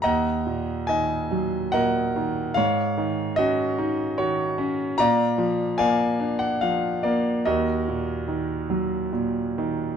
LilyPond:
<<
  \new Staff \with { instrumentName = "Grand piano" } { \time 3/4 \key ees \minor \tempo 4 = 73 << { bes''4 aes''4 ges''4 | f''4 ees''4 des''8. r16 | bes''4 aes''8. ges''16 f''8 d''8 | ees''2 r4 | } \\ { <ees'' ges''>4 ees''4 <bes' ees''>4 | des''4 ges'4 ges'4 | <d'' f''>4 <d'' f''>4. r8 | <ges' bes'>2 r4 | } >> }
  \new Staff \with { instrumentName = "Grand piano" } { \clef bass \time 3/4 \key ees \minor ees,8 bes,8 ees8 ges8 bes,8 ees8 | aes,8 ees8 des'8 ees'8 ees8 des'8 | bes,8 f8 bes8 d'8 f8 bes8 | ees,8 bes,8 ees8 ges8 bes,8 ees8 | }
>>